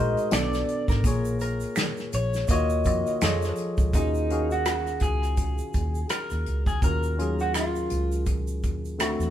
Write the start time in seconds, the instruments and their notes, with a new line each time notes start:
Already playing: fingered electric bass A#1, tine electric piano G#3 D#4 F#4 A#4, clean electric guitar D#5
0.00 tine electric piano C5
0.17 closed hi-hat, shaker
0.31 fingered electric bass B1, tine electric piano B2 B3 D4 A4 D5, clean electric guitar D5, finger snap, snare, closed hi-hat, shaker
0.53 snare, shaker
0.68 closed hi-hat
0.88 fingered electric bass G#1, clean electric guitar A#4, kick, snare, closed hi-hat, shaker
1.04 fingered electric bass A#1, tine electric piano A#2 A#3 F4 G#4 C#5, kick, closed hi-hat, shaker
1.25 shaker
1.40 clean electric guitar A#4, closed hi-hat, shaker
1.60 closed hi-hat, shaker
1.76 finger snap, snare, closed hi-hat, shaker
1.97 snare, shaker
2.13 fingered electric bass A#1, clean electric guitar C#5, closed hi-hat, shaker
2.34 snare, closed hi-hat, shaker
2.48 fingered electric bass D#2, tine electric piano D#3 A#3 F4 F#4, clean electric guitar D#5, kick, closed hi-hat, shaker
2.52 tine electric piano C#5
2.69 shaker
2.84 fingered electric bass F2, tine electric piano D#3 A#3 F4 F#4, kick, closed hi-hat, shaker
2.89 tine electric piano D#5
3.06 closed hi-hat, shaker
3.21 fingered electric bass F2, tine electric piano F3 F4 G#4 A4 C#5 D#5, finger snap, snare, closed hi-hat, shaker
3.42 snare, shaker
3.56 closed hi-hat, shaker
3.77 fingered electric bass C#2, kick, closed hi-hat, shaker
3.93 fingered electric bass D#2, tine electric piano D#3 C#4 F4 F#4 G#4, clean electric guitar D#4, kick, closed hi-hat, shaker
4.15 shaker
4.30 tine electric piano D#3 C#4 F#4 G#4 F5, closed hi-hat
4.51 clean electric guitar F#4, closed hi-hat, shaker
4.65 finger snap, cross-stick, closed hi-hat, shaker
4.87 cross-stick, shaker
5.00 fingered electric bass C#2, clean electric guitar G#4, kick, closed hi-hat, shaker
5.22 cross-stick, closed hi-hat, shaker
5.37 kick, closed hi-hat, shaker
5.58 shaker
5.74 fingered electric bass D#2, kick, closed hi-hat, shaker
5.95 shaker
6.09 clean electric guitar A#4, finger snap, cross-stick, closed hi-hat, shaker
6.30 fingered electric bass D#2, cross-stick, shaker
6.46 fingered electric bass C#2, closed hi-hat
6.66 clean electric guitar G#4, kick, cross-stick, shaker
6.82 fingered electric bass D#2, tine electric piano D#3 C#4 F4 F#4 A#4, clean electric guitar A#4, kick, closed hi-hat, shaker
7.03 shaker
7.17 tine electric piano D#3 F#3 C#4 F4 G#4, closed hi-hat
7.39 clean electric guitar F#4, closed hi-hat, shaker
7.54 clean electric guitar F4, finger snap, cross-stick, closed hi-hat, shaker
7.75 shaker
7.90 fingered electric bass C#2, closed hi-hat, shaker
8.12 closed hi-hat, shaker
8.26 kick, closed hi-hat, shaker
8.47 shaker
8.63 fingered electric bass D#2, kick, closed hi-hat, shaker
8.85 shaker
8.98 fingered electric bass D2, tine electric piano D3 A3 C4 E4 F#4, finger snap, cross-stick, closed hi-hat, shaker
9.19 fingered electric bass E2, cross-stick, shaker